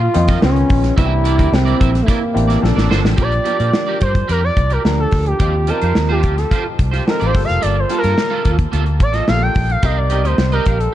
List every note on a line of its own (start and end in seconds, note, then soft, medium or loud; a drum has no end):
0.00 0.14 D#3 medium
0.00 0.14 F3 medium
0.00 0.14 A#3 medium
0.00 0.15 C4 medium
0.00 0.40 F4 loud
0.00 0.43 F4 medium
0.00 muted clean electric guitar stroke medium
0.14 0.35 F2 loud
0.14 0.40 D#3 medium
0.14 0.42 F3 medium
0.14 0.42 A#3 medium
0.14 0.42 C4 medium
0.14 0.42 D#4 medium
0.14 muted clean electric guitar stroke soft
0.14 closed hi-hat medium
0.28 0.40 F4 medium
0.28 0.40 A#4 medium
0.28 0.39 D#5 medium
0.28 kick medium
0.28 snare soft
0.28 closed hi-hat medium
0.41 0.63 C#2 loud
0.41 0.86 D#3 medium
0.41 0.86 G#3 medium
0.41 0.86 B3 medium
0.41 0.86 C#4 medium
0.41 0.95 C#4 medium
0.41 0.87 F4 medium
0.41 muted clean electric guitar stroke soft
0.41 snare loud
0.56 muted clean electric guitar stroke soft
0.56 closed hi-hat soft
0.70 0.90 A#1 medium
0.70 kick loud
0.70 open hi-hat medium
0.84 muted clean electric guitar stroke soft
0.84 snare soft
0.84 closed hi-hat medium
0.96 1.40 C2 loud
0.96 1.81 E3 medium
0.96 1.81 A#3 medium
0.96 1.81 C4 medium
0.96 1.81 D4 medium
0.96 1.11 E4 medium
0.96 1.54 E4 loud
0.96 1.05 F#4 medium
0.96 1.12 A#4 loud
0.96 1.12 E5 loud
0.96 kick loud
0.96 closed hi-hat medium
1.05 1.85 G4 medium
1.24 1.36 E4 medium
1.24 1.36 A#4 medium
1.24 1.37 D5 medium
1.24 closed hi-hat medium
1.38 1.49 D2 medium
1.38 1.50 E4 medium
1.38 1.50 A#4 medium
1.38 1.50 D5 medium
1.38 kick medium
1.38 closed hi-hat medium
1.51 1.72 C2 medium
1.51 2.01 C4 medium
1.51 muted clean electric guitar stroke soft
1.51 snare loud
1.65 1.78 E4 medium
1.65 1.78 A#4 medium
1.65 1.80 D5 medium
1.65 closed hi-hat soft
1.79 2.01 A#1 medium
1.79 1.91 E4 medium
1.79 1.91 A#4 medium
1.79 1.92 E5 medium
1.79 kick medium
1.79 closed hi-hat medium
1.93 muted clean electric guitar stroke medium
1.93 snare soft
1.93 closed hi-hat medium
2.02 2.10 A3 medium
2.06 2.92 A#3 medium
2.06 2.22 E4 medium
2.06 2.21 A#4 medium
2.06 2.19 D5 loud
2.06 kick loud
2.06 closed hi-hat medium
2.20 muted clean electric guitar stroke soft
2.34 2.56 A1 medium
2.34 2.62 E3 medium
2.34 2.61 A#3 medium
2.34 2.61 C4 medium
2.34 2.62 D4 medium
2.34 2.63 G4 medium
2.34 muted clean electric guitar stroke soft
2.34 closed hi-hat medium
2.48 2.61 E4 medium
2.48 2.60 A#4 medium
2.48 2.60 D5 medium
2.48 snare soft
2.48 closed hi-hat medium
2.61 2.73 A#1 loud
2.61 3.07 F3 medium
2.61 3.07 A#3 medium
2.61 3.07 C4 medium
2.61 3.08 D4 medium
2.61 3.08 A4 medium
2.61 muted clean electric guitar stroke soft
2.61 snare medium
2.75 2.87 A1 medium
2.75 2.88 D4 soft
2.75 2.88 A4 medium
2.75 2.87 D5 medium
2.75 snare medium
2.89 3.00 G1 medium
2.89 3.04 D4 medium
2.89 3.03 A4 medium
2.89 3.03 C5 medium
2.89 snare medium
3.04 3.14 A1 medium
3.04 muted clean electric guitar stroke soft
3.04 snare loud
3.16 3.38 A#1 loud
3.16 3.39 F3 medium
3.16 3.39 A#3 medium
3.16 3.39 D4 medium
3.16 3.32 G4 medium
3.16 3.40 G4 medium
3.16 3.32 A#4 medium
3.16 3.33 D5 medium
3.16 kick loud
3.16 closed hi-hat medium
3.21 3.99 D5 loud
3.32 closed hi-hat soft
3.44 4.30 F3 medium
3.44 4.30 A#3 medium
3.44 4.30 D4 medium
3.44 3.56 G4 medium
3.44 4.30 G4 medium
3.44 3.57 A#4 medium
3.44 3.57 D5 medium
3.44 closed hi-hat medium
3.59 3.70 A#2 medium
3.59 3.72 G4 medium
3.59 3.71 A#4 medium
3.59 3.71 D5 medium
3.59 closed hi-hat medium
3.73 muted clean electric guitar stroke soft
3.73 snare loud
3.87 3.99 G4 medium
3.87 4.00 A#4 medium
3.87 4.01 D5 medium
4.00 4.22 G2 medium
4.00 4.12 G4 medium
4.00 4.13 A#4 medium
4.00 4.28 C5 medium
4.00 4.13 D5 medium
4.00 kick medium
4.00 closed hi-hat medium
4.14 muted clean electric guitar stroke soft
4.14 kick medium
4.14 closed hi-hat soft
4.28 4.49 F2 medium
4.28 4.43 G4 medium
4.28 4.42 A#4 loud
4.28 4.43 A#4 loud
4.28 4.41 D5 medium
4.28 closed hi-hat medium
4.42 4.74 D5 loud
4.42 muted clean electric guitar stroke soft
4.56 4.77 C2 medium
4.56 muted clean electric guitar stroke soft
4.56 kick medium
4.56 closed hi-hat medium
4.70 4.82 G4 medium
4.70 4.82 A#4 medium
4.70 4.99 A#4 medium
4.70 4.82 D5 medium
4.70 closed hi-hat soft
4.84 5.05 D2 medium
4.84 5.27 F3 medium
4.84 5.27 A#3 medium
4.84 5.27 D4 medium
4.84 5.27 G4 medium
4.84 muted clean electric guitar stroke soft
4.84 snare loud
4.98 5.25 A4 medium
4.98 muted clean electric guitar stroke soft
5.11 5.32 D2 medium
5.11 kick medium
5.11 snare soft
5.11 open hi-hat medium
5.25 5.71 G4 medium
5.25 muted clean electric guitar stroke soft
5.25 closed hi-hat soft
5.39 5.70 D#2 loud
5.39 5.61 F3 medium
5.39 5.61 C4 medium
5.39 5.61 D#4 medium
5.39 5.54 F4 medium
5.39 5.54 G4 medium
5.39 5.62 G4 medium
5.39 5.54 D5 medium
5.39 kick loud
5.39 closed hi-hat medium
5.67 6.52 F3 medium
5.67 6.52 C4 medium
5.67 6.52 D#4 medium
5.67 5.79 F4 medium
5.67 5.79 G4 medium
5.67 5.75 G4 medium
5.67 6.10 A#4 loud
5.67 5.79 C5 medium
5.67 closed hi-hat medium
5.75 6.55 A5 medium
5.81 5.92 F2 medium
5.81 5.94 F4 soft
5.81 5.93 G4 medium
5.81 5.93 C5 medium
5.81 closed hi-hat medium
5.95 6.24 D#2 medium
5.95 muted clean electric guitar stroke soft
5.95 snare loud
6.09 6.22 F4 medium
6.09 6.23 G4 medium
6.09 6.40 G4 medium
6.09 6.23 C5 medium
6.23 6.44 D2 medium
6.23 6.34 F4 medium
6.23 6.35 G4 medium
6.23 6.35 D5 medium
6.23 kick medium
6.23 closed hi-hat medium
6.37 6.66 A4 medium
6.37 muted clean electric guitar stroke medium
6.37 snare soft
6.37 closed hi-hat soft
6.51 6.65 F4 medium
6.51 6.65 G4 loud
6.51 6.64 C5 loud
6.51 kick loud
6.51 closed hi-hat medium
6.65 muted clean electric guitar stroke soft
6.78 6.99 C2 medium
6.78 muted clean electric guitar stroke soft
6.78 kick loud
6.78 closed hi-hat medium
6.91 7.04 F4 medium
6.91 7.04 G4 medium
6.91 7.03 C5 medium
6.91 snare soft
6.91 closed hi-hat soft
7.06 7.34 F3 medium
7.06 7.34 C4 medium
7.06 7.34 D#4 medium
7.06 7.34 A4 medium
7.06 7.25 A#4 medium
7.06 snare loud
7.20 7.31 A1 medium
7.20 7.34 F4 medium
7.20 7.35 G4 medium
7.20 7.34 D5 medium
7.20 closed hi-hat soft
7.26 7.43 C5 medium
7.34 7.45 G1 medium
7.34 7.79 G3 medium
7.34 7.79 A#3 medium
7.34 7.79 F4 medium
7.34 7.79 A4 medium
7.34 muted clean electric guitar stroke soft
7.34 kick loud
7.34 snare soft
7.34 open hi-hat medium
7.44 7.64 F5 loud
7.44 muted clean electric guitar stroke medium
7.49 7.59 F1 medium
7.49 snare soft
7.49 closed hi-hat medium
7.61 7.83 G1 loud
7.61 7.76 A#3 medium
7.61 7.76 F4 medium
7.61 7.76 A4 medium
7.61 7.81 D5 loud
7.61 closed hi-hat medium
7.79 7.97 C5 medium
7.89 8.73 G3 medium
7.89 8.01 A#3 medium
7.89 8.74 A#3 medium
7.89 8.01 F4 medium
7.89 8.74 F4 medium
7.89 8.02 A4 medium
7.89 8.74 A5 medium
7.89 closed hi-hat medium
7.98 8.50 A#4 medium
8.03 8.14 G2 loud
8.03 8.15 A#3 soft
8.03 8.15 F4 medium
8.03 8.15 A4 medium
8.03 closed hi-hat medium
8.17 muted clean electric guitar stroke soft
8.17 snare loud
8.30 8.43 A#3 medium
8.30 8.44 F4 medium
8.30 8.44 A4 medium
8.44 8.65 D#2 medium
8.44 8.56 A#3 medium
8.44 8.56 F4 medium
8.44 8.56 A4 medium
8.44 kick medium
8.44 closed hi-hat medium
8.58 muted clean electric guitar stroke soft
8.58 kick medium
8.58 closed hi-hat soft
8.72 9.01 D2 medium
8.72 8.86 A#3 medium
8.72 8.86 F4 medium
8.72 8.85 A4 loud
8.72 closed hi-hat medium
8.86 muted clean electric guitar stroke soft
8.86 closed hi-hat soft
8.99 9.20 A1 medium
8.99 9.15 D5 medium
8.99 muted clean electric guitar stroke soft
8.99 kick medium
8.99 closed hi-hat medium
9.13 9.25 A#3 soft
9.13 9.25 F4 soft
9.13 9.25 A4 medium
9.13 9.28 D#5 loud
9.13 snare soft
9.13 closed hi-hat soft
9.27 9.48 A#1 medium
9.27 9.70 G3 medium
9.27 9.70 A#3 medium
9.27 9.70 F4 medium
9.27 9.70 A4 medium
9.27 9.44 F5 loud
9.27 muted clean electric guitar stroke soft
9.27 snare loud
9.42 9.73 G5 loud
9.42 muted clean electric guitar stroke soft
9.55 9.76 A#1 medium
9.55 kick medium
9.55 open hi-hat medium
9.69 9.87 F5 loud
9.69 muted clean electric guitar stroke medium
9.69 closed hi-hat soft
9.82 10.25 C2 loud
9.82 10.04 G3 medium
9.82 10.04 C4 medium
9.82 10.04 D#4 medium
9.82 9.97 G4 medium
9.82 9.98 A#4 medium
9.82 10.05 A#4 medium
9.82 9.99 D#5 loud
9.82 9.98 F5 loud
9.82 kick loud
9.82 closed hi-hat medium
9.97 10.27 D5 loud
10.10 10.94 G3 medium
10.10 10.94 C4 medium
10.10 10.94 D#4 medium
10.10 10.22 G4 medium
10.10 10.22 A#4 medium
10.10 10.94 A#4 medium
10.10 10.22 D#5 medium
10.10 closed hi-hat medium
10.24 10.35 D2 medium
10.24 10.36 G4 medium
10.24 10.36 A#4 medium
10.24 10.52 C5 medium
10.24 10.36 D#5 medium
10.24 closed hi-hat medium
10.38 10.58 C2 medium
10.38 muted clean electric guitar stroke soft
10.38 snare loud
10.52 10.65 G4 medium
10.52 10.81 A#4 medium
10.52 10.66 A#4 medium
10.52 10.67 D#5 medium
10.52 closed hi-hat soft
10.66 10.87 A#1 medium
10.66 10.78 G4 medium
10.66 10.78 A#4 medium
10.66 10.78 F5 medium
10.66 kick medium
10.66 closed hi-hat medium
10.79 10.94 A4 medium
10.79 muted clean electric guitar stroke soft
10.79 closed hi-hat medium